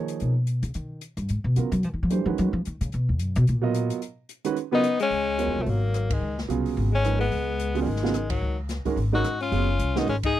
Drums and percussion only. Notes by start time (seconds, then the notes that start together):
0.08 closed hi-hat
0.20 closed hi-hat
0.47 closed hi-hat
0.63 closed hi-hat
0.74 closed hi-hat
1.01 closed hi-hat
1.17 closed hi-hat
1.29 closed hi-hat
1.56 closed hi-hat
1.72 closed hi-hat
1.83 closed hi-hat
2.10 closed hi-hat
2.38 closed hi-hat
2.65 closed hi-hat
2.81 closed hi-hat
2.92 closed hi-hat
3.19 closed hi-hat
3.35 closed hi-hat
3.47 closed hi-hat
3.74 closed hi-hat
3.90 closed hi-hat
4.02 closed hi-hat
4.29 closed hi-hat
4.45 closed hi-hat
4.56 closed hi-hat
4.84 closed hi-hat
5.00 closed hi-hat
5.11 open hi-hat
5.39 closed hi-hat
5.66 open hi-hat
5.94 cross-stick, closed hi-hat
6.10 kick, ride
6.38 snare
6.50 closed hi-hat
6.66 open hi-hat
6.77 open hi-hat
7.04 cross-stick, closed hi-hat
7.21 open hi-hat
7.32 open hi-hat
7.59 closed hi-hat
7.75 open hi-hat
7.86 open hi-hat
7.96 snare
8.05 snare
8.14 cross-stick, closed hi-hat
8.30 kick, ride
8.69 snare, closed hi-hat
8.85 kick, open hi-hat
8.97 open hi-hat
9.24 cross-stick, closed hi-hat
9.40 open hi-hat
9.52 open hi-hat
9.79 closed hi-hat
9.96 snare
10.07 open hi-hat
10.23 kick, ride